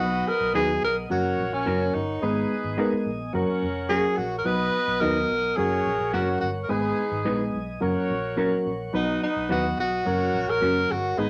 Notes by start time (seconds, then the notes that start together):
Already playing: F#3 F#4 F#5
0.00 B1 B3 D#4 F#4 B4 D#5 D#6
0.28 A#4
0.41 B1
0.54 D#2 F#3 B3 D#4 F#4 G#4 B4
0.82 B1 A#4
1.10 F#1 F#3 A#3 C#4 F#4 A#4 C#5 C#6
1.38 A#1
1.52 A#1 C#4
1.66 F#1 F#3 A#3 C#4 F#4 A#4
1.94 G1 D#4
2.22 G#1 G#3 B3 D#4 G#4 B4 D#5 G#5 D#6
2.64 G#1
2.78 G#3 B3 D#4 G#4 A#4 B4
2.92 muted fingered electric bass stroke
3.06 A#1
3.33 F#1 F#3 A#3 C#4 F#4 A#4 C#5 F#5 C#6
3.62 F1
3.89 F#3 A#3 C#4 F#4 G#4 A#4
4.17 A#1 F#4
4.38 A#4
4.45 B1 F#3 B3 D#4 F#4 B4 D#5 D#6
4.88 B1
5.00 D#2 F#3 B3 D#4 F#4 A#4 B4 D#5
5.29 B1
5.57 F#1 F#3 A#3 C#4 F#4 G#4 A#4 C#5 C#6
5.86 A#1
6.00 A#1
6.13 F#1 F#3 A#3 C#4 F#4 A#4
6.41 G1 F#4
6.63 A#4
6.69 G#1 G#3 B3 D#4 G#4 B4 D#5 G#5 D#6
7.11 G#1
7.25 A#1 G#3 B3 D#4 G#4 B4
7.54 B1
7.81 F#1 F#3 A#3 C#4 F#4 A#4 C#5 F#5 C#6
7.96 muted fingered electric bass stroke
8.10 A#1
8.36 F#3 A#3 C#4 F#4 A#4
8.66 A#1
8.93 B1 F#3 B3 D#4 F#4 B4 D#5 F#5 D#6
9.23 D#4
9.36 B1
9.49 D#2 F#3 B3 D#4 F#4 B4
9.78 B1 F#4
10.05 F#1 F#3 A#3 C#4 F#4 A#4 C#5 F#5 C#6
10.34 A#1
10.48 A#1 A#4
10.61 F#1 F#3 A#3 C#4 F#4 A#4
10.91 G1 F#4
11.17 G#1 G#3 B3 D#4 G#4 B4 D#5 G#5 D#6